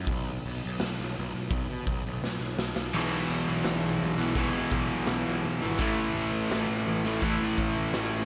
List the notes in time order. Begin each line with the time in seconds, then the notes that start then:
0.06 B1, kick, open hi-hat
0.43 B1, open hi-hat
0.65 B1
0.79 B1, snare, open hi-hat
0.99 B1
1.15 B1, open hi-hat
1.34 B1
1.50 B1, kick, open hi-hat
1.70 B2
1.86 B1, kick, open hi-hat
2.06 B1
2.23 B1, snare
2.40 B1
2.58 B1, snare
2.75 B1, snare
2.93 B1 E2 B2 E3, crash
3.28 B1, open hi-hat
3.48 B1
3.64 B1, snare, open hi-hat
3.83 B1
3.99 B1, open hi-hat
4.17 B1 B2 E3
4.21 E2
4.35 B1 E2 B2, kick, open hi-hat
4.39 E3
4.54 B2
4.71 B1, kick, open hi-hat
4.92 B1
5.07 B1, snare, open hi-hat
5.28 B1
5.43 B1, open hi-hat
5.62 G#1 E2 B2 E3
5.79 A1 A2 E3 A3, kick, open hi-hat
6.15 A1, open hi-hat
6.34 A1
6.50 A1, snare, open hi-hat
6.69 A1
6.87 A1, open hi-hat
7.05 A1 A2 E3 A3
7.22 A1 A2 E3 A3, kick, open hi-hat
7.41 A2
7.58 A1, kick, open hi-hat
7.77 A1
7.93 A1, snare, open hi-hat
8.13 A1